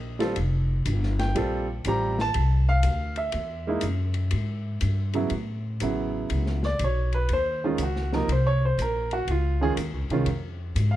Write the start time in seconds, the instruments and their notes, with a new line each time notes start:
Already playing: upright bass A#1, grand piano D#5
0.19 grand piano G3 C4 F4 A4, snare, ride
0.36 upright bass F1, ride
0.86 upright bass G1, hi-hat pedal, ride
1.03 snare
1.19 grand piano G5, snare, ride
1.35 upright bass A#1, grand piano G3 C4 F4 A4, ride
1.85 upright bass A1, grand piano G3 C4 F4 G4 A#5, hi-hat pedal, ride
2.19 grand piano A5, snare
2.34 upright bass C2, ride
2.69 grand piano F5
2.83 upright bass D2, hi-hat pedal, ride
3.16 grand piano E5, ride
3.32 upright bass E2, ride
3.67 grand piano G#3 A#3 D#4 E4
3.81 upright bass F#2, hi-hat pedal, ride
4.14 ride
4.31 upright bass G#2, ride
4.81 upright bass G2, hi-hat pedal, ride
5.13 grand piano C#3 F#3 B3 E4, ride
5.30 upright bass A2, ride
5.80 upright bass A1, grand piano C#3 F#3 B3 E4, hi-hat pedal, ride
6.30 upright bass C#2, ride
6.46 snare
6.63 grand piano D5, snare
6.79 upright bass B1, hi-hat pedal, ride
6.84 grand piano C#5
7.13 grand piano B4, ride
7.29 upright bass D#2, ride
7.33 grand piano C5
7.64 grand piano D#3 G#3 C#4 D#4 F4
7.78 upright bass C#2, hi-hat pedal, ride
7.83 grand piano F#4
7.96 snare
8.12 grand piano C3 F3 A#3 D#4 A#4, snare
8.28 upright bass C2, ride
8.32 grand piano C5
8.47 grand piano C#5
8.65 grand piano C5
8.77 upright bass A#1, hi-hat pedal, ride
8.82 grand piano A#4
9.11 grand piano F#4, ride
9.27 upright bass C#2, grand piano F4, ride
9.61 grand piano D#3 G#3 C#4 F4 G#4
9.77 upright bass D#2, hi-hat pedal, ride
9.93 upright bass C#2
10.09 upright bass C2, grand piano D#3 G#3 C#4 F4, ride
10.26 upright bass F2, ride
10.75 upright bass G#2, hi-hat pedal, ride
10.91 grand piano F5